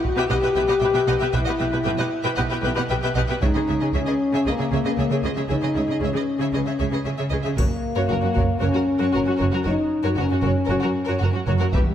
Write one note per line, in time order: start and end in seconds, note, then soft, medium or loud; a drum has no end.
0.03 0.29 F#4 medium
0.03 taiko soft
0.16 0.21 B2 medium
0.16 0.22 G4 medium
0.16 0.22 B4 medium
0.16 0.23 E5 medium
0.16 0.23 G5 medium
0.29 0.35 B1 soft
0.29 0.35 B2 soft
0.29 1.33 G4 medium
0.29 0.35 G4 soft
0.29 0.35 B4 soft
0.29 0.36 D#5 soft
0.29 0.36 F#5 soft
0.42 0.47 B2 soft
0.42 0.49 G4 soft
0.42 0.48 B4 soft
0.42 0.48 E5 soft
0.42 0.48 G5 soft
0.55 0.61 B1 soft
0.55 0.60 B2 medium
0.55 0.61 G4 medium
0.55 0.61 B4 medium
0.55 0.61 E5 medium
0.55 0.61 G5 medium
0.68 0.74 B2 soft
0.68 0.74 G4 soft
0.68 0.74 B4 soft
0.68 0.74 D#5 soft
0.68 0.74 F#5 soft
0.80 0.87 B1 soft
0.80 0.86 B2 soft
0.80 0.89 G4 soft
0.80 0.89 B4 soft
0.80 0.86 E5 soft
0.80 0.86 G5 soft
0.93 0.99 B2 medium
0.93 1.00 G4 medium
0.93 1.00 B4 medium
0.93 1.00 E5 medium
0.93 1.00 G5 medium
1.07 1.13 B1 soft
1.07 1.13 B2 soft
1.07 1.14 G4 medium
1.07 1.13 B4 medium
1.07 1.13 D#5 soft
1.07 1.13 F#5 soft
1.20 1.26 B2 soft
1.20 1.27 G4 soft
1.20 1.26 B4 soft
1.20 1.26 E5 soft
1.20 1.25 G5 soft
1.32 1.39 B1 medium
1.32 1.39 B2 medium
1.32 2.90 E4 medium
1.32 1.39 G4 soft
1.32 1.39 B4 medium
1.32 1.38 E5 medium
1.32 1.38 G5 medium
1.46 1.52 B2 soft
1.46 1.53 G4 soft
1.46 1.53 B4 soft
1.46 1.51 D#5 soft
1.46 1.51 F#5 soft
1.59 1.65 B1 soft
1.59 1.65 B2 soft
1.59 1.66 G4 soft
1.59 1.65 B4 soft
1.59 1.65 E5 soft
1.59 1.64 G5 soft
1.72 1.78 B2 soft
1.72 1.78 G4 soft
1.72 1.77 B4 soft
1.72 1.78 B4 soft
1.72 1.78 E5 soft
1.84 1.91 B1 medium
1.84 1.92 B2 medium
1.84 1.90 G4 medium
1.84 1.90 B4 medium
1.84 1.90 E5 medium
1.84 1.90 G5 medium
1.99 2.04 B2 soft
1.99 2.04 G4 soft
1.99 2.04 B4 soft
1.99 2.04 D#5 soft
1.99 2.04 F#5 soft
2.24 2.30 B2 medium
2.24 2.30 G4 medium
2.24 2.30 B4 medium
2.24 2.29 E5 medium
2.24 2.30 G5 medium
2.37 2.43 B1 soft
2.37 2.43 B2 soft
2.37 2.43 G4 soft
2.37 2.43 B4 soft
2.37 2.42 D#5 soft
2.37 2.42 F#5 soft
2.50 2.57 B2 soft
2.50 2.56 G4 soft
2.50 2.56 B4 soft
2.50 2.56 E5 soft
2.50 2.57 G5 soft
2.63 2.68 B1 medium
2.63 2.70 B2 medium
2.63 2.68 G4 medium
2.63 2.68 B4 medium
2.63 2.69 E5 soft
2.63 2.70 G5 soft
2.76 2.83 B2 soft
2.76 2.81 G4 soft
2.76 2.81 B4 soft
2.76 2.82 D#5 soft
2.76 2.82 F#5 soft
2.89 2.94 B1 soft
2.89 2.95 B2 soft
2.89 2.95 G4 soft
2.89 2.95 B4 soft
2.89 2.95 E5 soft
2.89 2.95 G5 soft
3.03 3.09 B2 medium
3.03 3.08 G4 medium
3.03 3.08 B4 soft
3.03 3.08 E5 medium
3.03 3.08 G5 soft
3.16 3.21 B1 soft
3.16 3.21 B2 soft
3.16 3.22 G4 soft
3.16 3.22 B4 soft
3.16 3.21 D#5 soft
3.16 3.21 F#5 soft
3.29 3.34 B2 soft
3.29 3.35 G4 soft
3.29 3.35 B4 soft
3.29 3.34 E5 soft
3.29 3.34 G5 soft
3.41 3.46 C#2 medium
3.41 3.47 C#3 medium
3.41 3.90 D#4 medium
3.41 3.48 G#4 soft
3.41 3.47 C#5 soft
3.41 3.47 E5 soft
3.41 taiko soft
3.55 3.60 C#3 soft
3.55 3.61 G#4 soft
3.55 3.60 B4 soft
3.55 3.60 D#5 soft
3.67 3.73 C#2 soft
3.67 3.74 C#3 soft
3.67 3.74 G#4 soft
3.67 3.74 C#5 soft
3.67 3.73 E5 soft
3.81 3.87 C#3 soft
3.81 3.86 G#4 soft
3.81 3.87 G#4 soft
3.81 3.86 D#5 soft
3.93 3.98 C#2 soft
3.93 4.00 C#3 soft
3.93 4.45 C#4 medium
3.93 4.00 G#4 soft
3.93 3.99 C#5 medium
3.93 3.99 E5 medium
4.07 4.13 C#3 soft
4.07 4.12 G#4 soft
4.07 4.13 B4 soft
4.07 4.12 D#5 soft
4.33 4.38 C#3 soft
4.33 4.38 G#4 soft
4.33 4.40 C#5 soft
4.33 4.39 E5 soft
4.46 4.52 C#2 soft
4.46 4.52 C#3 soft
4.46 5.24 A#3 medium
4.46 4.51 G#4 soft
4.46 4.52 B4 soft
4.46 4.52 D#5 soft
4.59 4.64 C#3 soft
4.59 4.65 G#4 soft
4.59 4.65 C#5 soft
4.59 4.64 E5 soft
4.72 4.77 C#2 soft
4.72 4.77 C#3 soft
4.72 4.77 G#4 soft
4.72 4.78 C#5 soft
4.72 4.78 E5 soft
4.85 4.90 C#3 soft
4.85 4.91 G#4 soft
4.85 4.91 B4 soft
4.85 4.91 D#5 soft
4.97 5.03 C#2 soft
4.97 5.02 C#3 soft
4.97 5.04 G#4 soft
4.97 5.03 C#5 soft
4.97 5.04 E5 soft
5.10 5.16 C#3 soft
5.10 5.17 G#4 soft
5.10 5.16 C#5 soft
5.10 5.16 E5 soft
5.24 5.29 C#2 soft
5.24 5.29 C#3 soft
5.24 5.50 G#3 soft
5.24 5.30 G#4 soft
5.24 5.29 B4 soft
5.24 5.29 D#5 soft
5.36 5.42 C#3 soft
5.36 5.43 G#4 soft
5.36 5.42 C#5 soft
5.36 5.41 E5 soft
5.48 5.55 C#2 soft
5.48 5.55 C#3 soft
5.48 6.00 D#4 medium
5.48 5.55 G#4 soft
5.48 5.55 C#5 soft
5.48 5.54 E5 soft
5.62 5.68 C#3 soft
5.62 5.68 G#4 soft
5.62 5.68 B4 soft
5.62 5.68 D#5 soft
5.75 5.81 C#2 soft
5.75 5.80 C#3 soft
5.75 5.81 G#4 soft
5.75 5.82 C#5 soft
5.75 5.81 E5 soft
5.88 5.93 C#3 soft
5.88 5.93 G#4 soft
5.88 5.96 G#4 soft
5.88 5.95 D#5 soft
6.00 6.07 C#2 soft
6.00 6.06 C#3 soft
6.00 7.05 C#4 soft
6.00 6.06 G#4 soft
6.00 6.08 C#5 soft
6.00 6.08 E5 soft
6.13 6.19 C#3 soft
6.13 6.20 G#4 soft
6.13 6.21 B4 soft
6.13 6.21 D#5 soft
6.39 6.45 C#3 soft
6.39 6.45 G#4 soft
6.39 6.46 C#5 soft
6.39 6.47 E5 soft
6.53 6.59 C#2 soft
6.53 6.58 C#3 soft
6.53 6.59 G#4 soft
6.53 6.60 B4 soft
6.53 6.60 D#5 soft
6.66 6.71 C#3 soft
6.66 6.72 G#4 soft
6.66 6.73 C#5 soft
6.66 6.72 E5 soft
6.79 6.85 C#2 soft
6.79 6.85 C#3 soft
6.79 6.85 G#4 soft
6.79 6.85 C#5 soft
6.79 6.85 E5 soft
6.92 6.97 C#3 soft
6.92 6.98 G#4 soft
6.92 6.98 B4 soft
6.92 6.98 D#5 soft
7.05 7.10 C#2 soft
7.05 7.11 C#3 soft
7.05 7.11 G#4 soft
7.05 7.11 C#5 soft
7.05 7.10 E5 soft
7.18 7.24 C#3 soft
7.18 7.24 G#4 soft
7.18 7.24 C#5 soft
7.18 7.23 E5 soft
7.30 7.37 C#2 soft
7.30 7.37 C#3 soft
7.30 7.55 G#3 soft
7.30 7.37 G#4 soft
7.30 7.35 B4 soft
7.30 7.36 D#5 soft
7.44 7.50 C#3 soft
7.44 7.50 G#4 soft
7.44 7.49 C#5 soft
7.44 7.49 E5 soft
7.55 7.63 F#1 soft
7.55 7.63 F#2 medium
7.55 8.59 A#3 medium
7.55 7.62 F#4 soft
7.55 7.62 A#4 soft
7.55 7.63 C#5 soft
7.55 taiko soft
7.55 triangle soft
7.95 8.02 F#2 medium
7.95 8.02 F#4 soft
7.95 8.00 A#4 soft
7.95 8.02 C#5 medium
8.08 8.14 F#1 soft
8.08 8.16 F#2 soft
8.08 8.13 F#4 soft
8.08 8.14 F#4 soft
8.12 8.17 A#4 soft
8.21 8.28 F#2 soft
8.21 8.27 C#4 soft
8.21 8.27 F#4 soft
8.21 8.30 F#4 soft
8.33 8.42 F#1 medium
8.33 8.42 F#2 soft
8.33 8.39 F#4 soft
8.33 8.40 A#4 soft
8.33 taiko soft
8.37 8.42 C#5 soft
8.59 8.67 F#1 soft
8.59 8.67 F#2 soft
8.59 9.65 C#4 medium
8.59 8.65 F#4 soft
8.59 8.66 A#4 soft
8.64 8.68 C#5 soft
8.73 8.80 F#2 soft
8.73 8.79 F#4 soft
8.73 8.80 A#4 soft
8.99 9.05 F#2 soft
8.99 9.05 F#4 soft
8.99 9.05 A#4 soft
8.99 9.08 C#5 soft
9.13 9.20 F#1 soft
9.13 9.19 F#2 soft
9.13 9.18 F#4 soft
9.13 9.20 A#4 soft
9.25 9.32 F#2 soft
9.25 9.30 C#4 soft
9.25 9.32 F#4 soft
9.29 9.34 F#4 soft
9.38 9.46 F#1 soft
9.38 9.45 F#2 soft
9.38 9.45 F#4 soft
9.38 9.43 A#4 soft
9.38 9.45 C#5 soft
9.52 9.58 F#2 soft
9.52 9.57 F#4 soft
9.52 9.58 F#4 soft
9.52 9.58 A#4 soft
9.64 9.71 F#1 soft
9.64 9.71 F#2 soft
9.64 10.17 D#4 medium
9.64 9.71 F#4 soft
9.64 9.69 A#4 soft
9.64 9.72 C#5 soft
10.03 10.09 F#2 medium
10.03 10.10 F#4 soft
10.03 10.08 A#4 soft
10.03 10.09 C#5 soft
10.17 10.23 F#1 soft
10.17 10.22 F#2 soft
10.17 11.22 C#4 medium
10.17 10.22 F#4 soft
10.17 10.24 A#4 soft
10.29 10.36 F#2 soft
10.29 10.34 C#4 soft
10.29 10.37 F#4 soft
10.41 10.49 F#1 soft
10.41 10.49 F#2 medium
10.41 10.48 F#4 soft
10.41 10.47 A#4 soft
10.45 10.50 C#5 soft
10.66 10.75 F#1 soft
10.66 10.75 F#2 soft
10.66 10.72 A#4 soft
10.66 10.75 C#5 soft
10.70 10.75 F#4 medium
10.80 10.88 F#2 soft
10.80 10.86 F#4 soft
10.80 10.88 F#4 soft
10.80 10.87 A#4 soft
11.05 11.14 F#2 soft
11.05 11.13 F#4 soft
11.05 11.11 A#4 soft
11.10 11.15 C#5 soft
11.19 11.27 F#1 soft
11.19 11.27 F#2 soft
11.19 11.25 F#4 soft
11.19 11.27 F#4 soft
11.19 11.27 A#4 soft
11.31 11.40 F#2 soft
11.31 11.37 C#4 soft
11.31 11.39 F#4 soft
11.31 11.40 F#4 soft
11.46 11.52 F#1 soft
11.46 11.53 F#2 medium
11.46 11.71 F#3 medium
11.46 11.53 F#4 medium
11.46 11.51 A#4 soft
11.46 11.52 C#5 medium
11.58 11.66 F#2 soft
11.58 11.64 F#4 soft
11.58 11.66 F#4 soft
11.58 11.65 A#4 soft
11.72 11.79 E1 soft
11.72 11.80 E2 medium
11.72 11.95 G3 medium
11.72 11.79 G4 soft
11.72 11.79 B4 medium
11.72 11.77 E5 soft
11.72 taiko soft